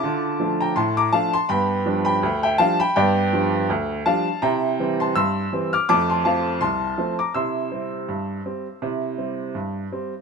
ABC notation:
X:1
M:2/4
L:1/16
Q:"Swing 16ths" 1/4=82
K:Cmix
V:1 name="Upright piano"
[ad']3 [gb] [ac'] [bd'] [fa] [ac'] | [g=b]3 [gb]2 [eg] [fa] [gb] | [dg]4 z2 [fa]2 | [gb]3 [ac'] [c'e']3 [d'f'] |
[ad'] [ac'] [fa]2 [ac']3 [bd'] | [c'e']8- | [c'e']4 z4 |]
V:2 name="Upright piano" clef=bass
[D,F]2 [F,A,D]2 A,,2 [F,A,D]2 | [G,,=B,]2 [F,G,D]2 D,,2 [F,G,D]2 | [G,,=B,]2 [F,G,D]2 D,,2 [F,G,D]2 | [C,E]2 [E,G,C]2 G,,2 [E,G,C]2 |
[F,,A,]2 [F,A,C]2 C,,2 [F,A,C]2 | [C,E]2 [G,C]2 G,,2 [G,C]2 | [C,E]2 [G,C]2 G,,2 [G,C]2 |]